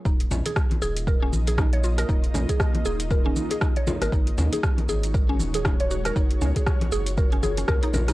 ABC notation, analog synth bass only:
X:1
M:4/4
L:1/16
Q:"Swing 16ths" 1/4=118
K:Ebm
V:1 name="Analog synth bass" clef=bass
E,,, z B,,, z3 E,,,4 B,,,6 | E,,, z B,,, z3 E,,,4 z4 z A,,, | A,,, z E,, z3 A,,,4 E,,,6 | G,,, z D,, z3 G,,,2 G,,,4 D,, z B,,, z |]